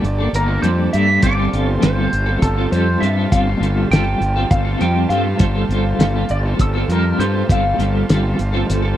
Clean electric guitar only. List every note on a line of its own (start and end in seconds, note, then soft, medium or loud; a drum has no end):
0.05 muted clean electric guitar stroke soft
0.19 0.50 A#3 medium
0.19 0.48 D4 medium
0.19 0.48 A4 medium
0.48 0.64 A#3 medium
0.48 0.65 D4 medium
0.48 0.66 A4 medium
0.64 0.93 G3 medium
0.64 0.94 A#3 medium
0.64 0.94 D4 medium
0.64 0.96 A4 medium
0.93 1.22 G3 medium
0.93 1.10 A#3 medium
0.93 1.09 D4 medium
0.93 1.08 A4 medium
1.08 1.23 A#3 medium
1.08 1.22 D4 medium
1.08 1.24 A4 medium
1.22 1.50 G3 medium
1.22 1.39 C4 medium
1.22 1.37 F4 medium
1.22 1.36 A4 medium
1.37 1.52 C4 medium
1.37 1.53 F4 medium
1.37 1.53 A4 medium
1.51 1.80 G3 medium
1.51 1.81 C4 medium
1.51 1.82 F4 medium
1.51 1.83 A4 medium
1.81 2.12 G3 medium
1.81 2.00 C4 medium
1.81 1.98 F4 medium
1.81 1.96 A4 medium
1.96 2.12 C4 medium
1.96 2.12 F4 medium
1.96 2.13 A4 medium
2.12 muted clean electric guitar stroke soft
2.26 2.58 C4 soft
2.26 2.57 F4 medium
2.26 2.56 A4 medium
2.56 2.72 C4 medium
2.56 2.73 F4 medium
2.56 2.74 A4 medium
2.71 3.00 G3 medium
2.71 3.01 C4 medium
2.71 3.03 F4 medium
2.71 3.04 A4 medium
3.01 3.30 G3 medium
3.01 3.18 C4 medium
3.01 3.17 F4 medium
3.01 3.15 A4 medium
3.15 3.31 C4 medium
3.15 3.32 F4 medium
3.15 3.33 A4 medium
3.30 3.60 G3 medium
3.30 3.49 C4 medium
3.30 3.48 F4 medium
3.30 3.46 A4 medium
3.46 3.61 C4 medium
3.46 3.62 F4 medium
3.46 3.64 A4 medium
3.61 3.90 G3 medium
3.61 3.91 C4 medium
3.61 3.93 F4 medium
3.61 3.93 A4 medium
3.91 4.21 G3 medium
3.91 4.08 C4 medium
3.91 4.06 F4 medium
3.91 4.04 A4 medium
4.04 4.21 C4 medium
4.04 4.22 F4 medium
4.04 4.22 A4 medium
4.21 muted clean electric guitar stroke soft
4.36 4.68 C4 medium
4.36 4.66 F4 medium
4.36 4.64 A4 medium
4.65 4.80 C4 medium
4.65 4.81 F4 medium
4.65 4.83 A4 medium
4.80 5.09 G3 medium
4.80 5.10 C4 medium
4.80 5.11 F4 medium
4.80 5.12 A4 medium
5.10 5.38 G3 medium
5.10 5.27 C4 medium
5.10 5.26 F4 medium
5.10 5.24 A4 loud
5.25 5.40 C4 medium
5.25 5.41 F4 medium
5.25 5.42 A4 medium
5.39 5.69 G3 medium
5.39 5.57 C4 medium
5.39 5.56 F4 medium
5.39 5.54 A4 medium
5.54 5.71 C4 medium
5.54 5.72 F4 medium
5.54 5.73 A4 medium
5.70 5.98 G3 medium
5.70 5.99 C4 medium
5.70 6.01 F4 medium
5.70 6.02 A4 medium
5.99 6.30 G3 medium
5.99 6.18 C4 medium
5.99 6.16 F4 medium
5.99 6.15 A4 medium
6.16 6.30 C4 medium
6.16 6.30 F4 medium
6.16 6.31 A4 medium
6.30 muted clean electric guitar stroke soft
6.46 6.76 C4 medium
6.46 6.75 F4 medium
6.46 6.74 A4 medium
6.75 6.89 C4 medium
6.75 6.90 F4 medium
6.75 6.91 A4 medium
6.90 7.18 G3 medium
6.90 7.19 C4 medium
6.90 7.20 F4 medium
6.90 7.20 A4 medium
7.19 7.48 G3 medium
7.19 7.36 C4 medium
7.19 7.34 F4 medium
7.19 7.33 A4 medium
7.34 7.48 C4 medium
7.34 7.50 F4 medium
7.34 7.51 A4 medium
7.49 7.77 G3 medium
7.49 7.66 C4 medium
7.49 7.65 F4 medium
7.49 7.63 A4 medium
7.64 7.78 C4 medium
7.64 7.79 F4 medium
7.64 7.79 A4 medium
7.78 8.08 G3 medium
7.78 8.08 C4 medium
7.78 8.10 F4 medium
7.78 8.10 A4 medium
8.09 8.38 G3 medium
8.09 8.25 C4 medium
8.09 8.23 F4 medium
8.09 8.22 A4 medium
8.23 8.37 C4 medium
8.23 8.39 F4 medium
8.23 8.38 A4 medium
8.39 muted clean electric guitar stroke soft
8.52 8.84 C4 soft
8.52 8.83 F4 medium
8.52 8.81 A4 medium
8.82 8.97 C4 medium
8.82 8.97 F4 medium
8.82 8.97 A4 medium